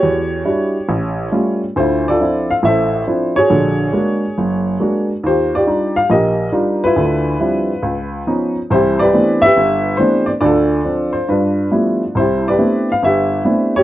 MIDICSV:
0, 0, Header, 1, 2, 480
1, 0, Start_track
1, 0, Key_signature, 0, "major"
1, 0, Tempo, 432900
1, 33, Time_signature, 4, 2, 24, 8
1, 15337, End_track
2, 0, Start_track
2, 0, Title_t, "Upright piano"
2, 0, Program_c, 0, 0
2, 0, Note_on_c, 0, 66, 69
2, 0, Note_on_c, 0, 67, 64
2, 0, Note_on_c, 0, 73, 91
2, 30, Note_on_c, 0, 40, 64
2, 450, Note_off_c, 0, 40, 0
2, 491, Note_off_c, 0, 66, 0
2, 497, Note_on_c, 0, 55, 48
2, 502, Note_on_c, 0, 64, 41
2, 503, Note_on_c, 0, 62, 45
2, 507, Note_on_c, 0, 66, 55
2, 846, Note_off_c, 0, 55, 0
2, 849, Note_off_c, 0, 62, 0
2, 849, Note_off_c, 0, 64, 0
2, 851, Note_off_c, 0, 66, 0
2, 982, Note_on_c, 0, 33, 67
2, 1407, Note_off_c, 0, 33, 0
2, 1460, Note_on_c, 0, 55, 49
2, 1466, Note_on_c, 0, 57, 43
2, 1468, Note_on_c, 0, 61, 44
2, 1472, Note_on_c, 0, 65, 53
2, 1759, Note_off_c, 0, 73, 0
2, 1772, Note_off_c, 0, 67, 0
2, 1809, Note_off_c, 0, 55, 0
2, 1812, Note_off_c, 0, 57, 0
2, 1813, Note_off_c, 0, 61, 0
2, 1815, Note_off_c, 0, 65, 0
2, 1953, Note_on_c, 0, 38, 65
2, 1964, Note_on_c, 0, 72, 77
2, 1986, Note_on_c, 0, 65, 54
2, 1992, Note_on_c, 0, 64, 58
2, 2263, Note_off_c, 0, 72, 0
2, 2308, Note_on_c, 0, 74, 79
2, 2317, Note_off_c, 0, 65, 0
2, 2327, Note_on_c, 0, 69, 60
2, 2333, Note_on_c, 0, 65, 62
2, 2374, Note_off_c, 0, 38, 0
2, 2435, Note_off_c, 0, 64, 0
2, 2436, Note_on_c, 0, 53, 47
2, 2441, Note_on_c, 0, 60, 45
2, 2443, Note_on_c, 0, 62, 43
2, 2451, Note_on_c, 0, 64, 54
2, 2743, Note_off_c, 0, 74, 0
2, 2778, Note_off_c, 0, 53, 0
2, 2778, Note_on_c, 0, 77, 88
2, 2780, Note_off_c, 0, 60, 0
2, 2781, Note_off_c, 0, 62, 0
2, 2786, Note_off_c, 0, 64, 0
2, 2833, Note_off_c, 0, 77, 0
2, 2910, Note_on_c, 0, 45, 63
2, 2917, Note_on_c, 0, 33, 66
2, 2936, Note_on_c, 0, 76, 82
2, 2944, Note_off_c, 0, 69, 0
2, 2960, Note_on_c, 0, 69, 54
2, 2963, Note_on_c, 0, 72, 57
2, 3226, Note_off_c, 0, 65, 0
2, 3333, Note_off_c, 0, 45, 0
2, 3337, Note_off_c, 0, 33, 0
2, 3376, Note_off_c, 0, 76, 0
2, 3405, Note_on_c, 0, 53, 46
2, 3408, Note_on_c, 0, 60, 46
2, 3408, Note_on_c, 0, 62, 43
2, 3411, Note_on_c, 0, 64, 53
2, 3728, Note_on_c, 0, 73, 97
2, 3743, Note_off_c, 0, 53, 0
2, 3744, Note_off_c, 0, 60, 0
2, 3745, Note_off_c, 0, 62, 0
2, 3746, Note_off_c, 0, 64, 0
2, 3746, Note_on_c, 0, 66, 64
2, 3755, Note_on_c, 0, 68, 66
2, 3858, Note_off_c, 0, 69, 0
2, 3859, Note_off_c, 0, 72, 0
2, 3881, Note_on_c, 0, 34, 58
2, 3886, Note_on_c, 0, 50, 64
2, 4299, Note_off_c, 0, 34, 0
2, 4302, Note_off_c, 0, 50, 0
2, 4348, Note_off_c, 0, 66, 0
2, 4357, Note_on_c, 0, 56, 47
2, 4363, Note_on_c, 0, 58, 45
2, 4365, Note_on_c, 0, 62, 44
2, 4365, Note_on_c, 0, 66, 52
2, 4700, Note_off_c, 0, 56, 0
2, 4703, Note_off_c, 0, 58, 0
2, 4704, Note_off_c, 0, 62, 0
2, 4704, Note_off_c, 0, 66, 0
2, 4853, Note_on_c, 0, 30, 62
2, 5266, Note_off_c, 0, 30, 0
2, 5322, Note_on_c, 0, 56, 43
2, 5329, Note_on_c, 0, 62, 42
2, 5330, Note_on_c, 0, 58, 41
2, 5336, Note_on_c, 0, 66, 53
2, 5605, Note_off_c, 0, 73, 0
2, 5618, Note_off_c, 0, 68, 0
2, 5663, Note_off_c, 0, 56, 0
2, 5666, Note_off_c, 0, 58, 0
2, 5666, Note_off_c, 0, 62, 0
2, 5670, Note_off_c, 0, 66, 0
2, 5804, Note_on_c, 0, 39, 63
2, 5838, Note_on_c, 0, 72, 77
2, 5845, Note_on_c, 0, 65, 54
2, 5855, Note_on_c, 0, 67, 53
2, 6123, Note_off_c, 0, 72, 0
2, 6151, Note_off_c, 0, 65, 0
2, 6155, Note_on_c, 0, 74, 83
2, 6159, Note_off_c, 0, 67, 0
2, 6168, Note_on_c, 0, 65, 55
2, 6176, Note_on_c, 0, 67, 58
2, 6222, Note_off_c, 0, 39, 0
2, 6279, Note_off_c, 0, 65, 0
2, 6283, Note_on_c, 0, 55, 47
2, 6287, Note_on_c, 0, 62, 43
2, 6292, Note_on_c, 0, 63, 45
2, 6296, Note_on_c, 0, 65, 51
2, 6612, Note_on_c, 0, 77, 94
2, 6623, Note_off_c, 0, 55, 0
2, 6626, Note_off_c, 0, 62, 0
2, 6628, Note_off_c, 0, 63, 0
2, 6630, Note_off_c, 0, 65, 0
2, 6636, Note_off_c, 0, 74, 0
2, 6756, Note_off_c, 0, 77, 0
2, 6760, Note_on_c, 0, 34, 63
2, 6775, Note_on_c, 0, 75, 72
2, 6780, Note_off_c, 0, 67, 0
2, 6791, Note_on_c, 0, 70, 58
2, 6797, Note_on_c, 0, 67, 56
2, 7180, Note_off_c, 0, 34, 0
2, 7217, Note_off_c, 0, 75, 0
2, 7234, Note_on_c, 0, 62, 45
2, 7234, Note_on_c, 0, 63, 45
2, 7235, Note_on_c, 0, 55, 51
2, 7244, Note_on_c, 0, 65, 55
2, 7579, Note_off_c, 0, 55, 0
2, 7579, Note_off_c, 0, 62, 0
2, 7579, Note_off_c, 0, 63, 0
2, 7582, Note_on_c, 0, 71, 92
2, 7584, Note_off_c, 0, 65, 0
2, 7609, Note_on_c, 0, 65, 63
2, 7614, Note_on_c, 0, 64, 69
2, 7694, Note_off_c, 0, 70, 0
2, 7696, Note_off_c, 0, 67, 0
2, 7718, Note_on_c, 0, 38, 61
2, 7724, Note_on_c, 0, 50, 64
2, 8138, Note_off_c, 0, 38, 0
2, 8141, Note_off_c, 0, 50, 0
2, 8194, Note_off_c, 0, 64, 0
2, 8200, Note_on_c, 0, 53, 47
2, 8200, Note_on_c, 0, 60, 44
2, 8202, Note_on_c, 0, 55, 43
2, 8207, Note_on_c, 0, 62, 45
2, 8211, Note_on_c, 0, 64, 53
2, 8541, Note_off_c, 0, 60, 0
2, 8542, Note_off_c, 0, 53, 0
2, 8542, Note_off_c, 0, 55, 0
2, 8545, Note_off_c, 0, 62, 0
2, 8547, Note_off_c, 0, 64, 0
2, 8677, Note_on_c, 0, 37, 65
2, 9097, Note_off_c, 0, 37, 0
2, 9170, Note_on_c, 0, 53, 49
2, 9170, Note_on_c, 0, 61, 42
2, 9171, Note_on_c, 0, 59, 42
2, 9175, Note_on_c, 0, 63, 51
2, 9449, Note_off_c, 0, 71, 0
2, 9463, Note_off_c, 0, 65, 0
2, 9506, Note_off_c, 0, 53, 0
2, 9506, Note_off_c, 0, 59, 0
2, 9506, Note_off_c, 0, 61, 0
2, 9508, Note_off_c, 0, 63, 0
2, 9650, Note_on_c, 0, 52, 65
2, 9654, Note_on_c, 0, 36, 67
2, 9663, Note_on_c, 0, 72, 89
2, 9688, Note_on_c, 0, 67, 63
2, 9694, Note_on_c, 0, 64, 69
2, 9973, Note_on_c, 0, 74, 96
2, 9986, Note_off_c, 0, 72, 0
2, 9989, Note_off_c, 0, 67, 0
2, 10000, Note_on_c, 0, 71, 70
2, 10006, Note_on_c, 0, 67, 64
2, 10064, Note_off_c, 0, 52, 0
2, 10066, Note_off_c, 0, 36, 0
2, 10125, Note_on_c, 0, 52, 53
2, 10129, Note_on_c, 0, 57, 47
2, 10131, Note_on_c, 0, 59, 42
2, 10135, Note_on_c, 0, 60, 49
2, 10136, Note_on_c, 0, 62, 51
2, 10441, Note_on_c, 0, 76, 116
2, 10463, Note_off_c, 0, 52, 0
2, 10463, Note_off_c, 0, 74, 0
2, 10465, Note_off_c, 0, 57, 0
2, 10466, Note_off_c, 0, 59, 0
2, 10468, Note_off_c, 0, 60, 0
2, 10468, Note_off_c, 0, 62, 0
2, 10472, Note_off_c, 0, 67, 0
2, 10472, Note_off_c, 0, 71, 0
2, 10488, Note_on_c, 0, 67, 69
2, 10488, Note_on_c, 0, 71, 71
2, 10583, Note_off_c, 0, 64, 0
2, 10608, Note_on_c, 0, 31, 68
2, 11022, Note_off_c, 0, 31, 0
2, 11034, Note_off_c, 0, 76, 0
2, 11056, Note_on_c, 0, 72, 81
2, 11077, Note_on_c, 0, 52, 48
2, 11084, Note_on_c, 0, 57, 45
2, 11084, Note_on_c, 0, 60, 45
2, 11085, Note_on_c, 0, 59, 44
2, 11088, Note_on_c, 0, 62, 56
2, 11378, Note_on_c, 0, 74, 78
2, 11381, Note_off_c, 0, 67, 0
2, 11381, Note_off_c, 0, 71, 0
2, 11402, Note_off_c, 0, 72, 0
2, 11418, Note_off_c, 0, 52, 0
2, 11421, Note_off_c, 0, 57, 0
2, 11422, Note_off_c, 0, 59, 0
2, 11422, Note_off_c, 0, 60, 0
2, 11424, Note_off_c, 0, 62, 0
2, 11434, Note_off_c, 0, 74, 0
2, 11538, Note_on_c, 0, 74, 87
2, 11543, Note_on_c, 0, 38, 64
2, 11550, Note_on_c, 0, 50, 66
2, 11582, Note_on_c, 0, 65, 66
2, 11593, Note_on_c, 0, 69, 62
2, 11968, Note_off_c, 0, 38, 0
2, 11972, Note_off_c, 0, 50, 0
2, 12030, Note_on_c, 0, 62, 53
2, 12031, Note_on_c, 0, 53, 48
2, 12031, Note_on_c, 0, 60, 43
2, 12338, Note_on_c, 0, 72, 73
2, 12374, Note_off_c, 0, 53, 0
2, 12374, Note_off_c, 0, 60, 0
2, 12374, Note_off_c, 0, 62, 0
2, 12376, Note_off_c, 0, 74, 0
2, 12486, Note_off_c, 0, 65, 0
2, 12491, Note_off_c, 0, 69, 0
2, 12494, Note_off_c, 0, 72, 0
2, 12513, Note_on_c, 0, 43, 65
2, 12519, Note_on_c, 0, 71, 62
2, 12550, Note_on_c, 0, 62, 49
2, 12550, Note_on_c, 0, 65, 45
2, 12933, Note_off_c, 0, 43, 0
2, 12965, Note_off_c, 0, 71, 0
2, 12985, Note_on_c, 0, 53, 46
2, 12989, Note_on_c, 0, 57, 42
2, 12992, Note_on_c, 0, 55, 44
2, 12994, Note_on_c, 0, 59, 43
2, 12994, Note_on_c, 0, 64, 50
2, 13330, Note_off_c, 0, 53, 0
2, 13332, Note_off_c, 0, 57, 0
2, 13334, Note_off_c, 0, 55, 0
2, 13335, Note_off_c, 0, 59, 0
2, 13335, Note_off_c, 0, 64, 0
2, 13448, Note_off_c, 0, 62, 0
2, 13449, Note_off_c, 0, 65, 0
2, 13473, Note_on_c, 0, 36, 61
2, 13492, Note_on_c, 0, 72, 79
2, 13523, Note_on_c, 0, 67, 53
2, 13524, Note_on_c, 0, 64, 55
2, 13818, Note_off_c, 0, 72, 0
2, 13838, Note_on_c, 0, 74, 82
2, 13844, Note_off_c, 0, 67, 0
2, 13857, Note_on_c, 0, 71, 60
2, 13861, Note_on_c, 0, 67, 58
2, 13892, Note_off_c, 0, 36, 0
2, 13942, Note_off_c, 0, 64, 0
2, 13950, Note_on_c, 0, 62, 45
2, 13954, Note_on_c, 0, 60, 42
2, 13955, Note_on_c, 0, 59, 43
2, 13956, Note_on_c, 0, 57, 47
2, 13958, Note_on_c, 0, 64, 53
2, 14292, Note_off_c, 0, 62, 0
2, 14294, Note_off_c, 0, 60, 0
2, 14295, Note_off_c, 0, 57, 0
2, 14295, Note_off_c, 0, 59, 0
2, 14296, Note_off_c, 0, 64, 0
2, 14313, Note_off_c, 0, 74, 0
2, 14322, Note_on_c, 0, 77, 85
2, 14443, Note_on_c, 0, 31, 67
2, 14448, Note_off_c, 0, 77, 0
2, 14463, Note_on_c, 0, 76, 78
2, 14464, Note_off_c, 0, 67, 0
2, 14468, Note_off_c, 0, 71, 0
2, 14481, Note_on_c, 0, 67, 54
2, 14484, Note_on_c, 0, 71, 54
2, 14857, Note_off_c, 0, 31, 0
2, 14896, Note_off_c, 0, 76, 0
2, 14913, Note_on_c, 0, 59, 41
2, 14914, Note_on_c, 0, 57, 46
2, 14916, Note_on_c, 0, 62, 43
2, 14919, Note_on_c, 0, 60, 43
2, 14919, Note_on_c, 0, 64, 54
2, 15253, Note_off_c, 0, 57, 0
2, 15253, Note_off_c, 0, 59, 0
2, 15254, Note_off_c, 0, 62, 0
2, 15256, Note_off_c, 0, 60, 0
2, 15256, Note_off_c, 0, 64, 0
2, 15259, Note_off_c, 0, 67, 0
2, 15259, Note_on_c, 0, 73, 95
2, 15275, Note_on_c, 0, 67, 66
2, 15277, Note_on_c, 0, 66, 71
2, 15337, Note_off_c, 0, 66, 0
2, 15337, Note_off_c, 0, 67, 0
2, 15337, Note_off_c, 0, 71, 0
2, 15337, Note_off_c, 0, 73, 0
2, 15337, End_track
0, 0, End_of_file